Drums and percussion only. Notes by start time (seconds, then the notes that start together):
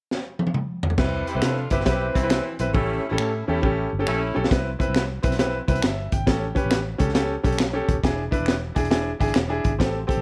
0.11 snare
0.39 high tom
0.47 high tom
0.54 mid tom
0.83 floor tom
0.90 floor tom
0.98 kick, snare, crash
1.27 closed hi-hat
1.42 finger snap, snare, closed hi-hat
1.70 kick, closed hi-hat
1.80 snare
1.86 kick, snare, closed hi-hat
2.15 kick, closed hi-hat
2.30 finger snap, snare, closed hi-hat
2.59 closed hi-hat
2.75 kick
3.18 finger snap
3.63 kick
4.07 finger snap
4.44 snare
4.51 kick, snare, closed hi-hat
4.80 kick, closed hi-hat
4.95 finger snap, snare, closed hi-hat
5.23 kick, closed hi-hat
5.32 snare, closed hi-hat
5.39 snare, closed hi-hat
5.68 kick, closed hi-hat
5.75 closed hi-hat
5.82 finger snap, snare, closed hi-hat
6.12 kick, closed hi-hat
6.27 kick, snare, closed hi-hat
6.56 kick, closed hi-hat
6.71 finger snap, snare, closed hi-hat
7.00 kick, closed hi-hat
7.09 snare
7.15 snare, closed hi-hat
7.45 kick, closed hi-hat
7.52 closed hi-hat
7.58 finger snap, snare, closed hi-hat
7.89 kick, closed hi-hat
8.04 kick, snare, closed hi-hat
8.32 kick, closed hi-hat
8.46 finger snap, snare, closed hi-hat
8.76 kick, closed hi-hat
8.85 closed hi-hat
8.91 snare, closed hi-hat
9.21 kick, closed hi-hat
9.28 closed hi-hat
9.34 finger snap, snare, closed hi-hat
9.64 kick, closed hi-hat
9.80 kick, snare, closed hi-hat
10.09 kick, closed hi-hat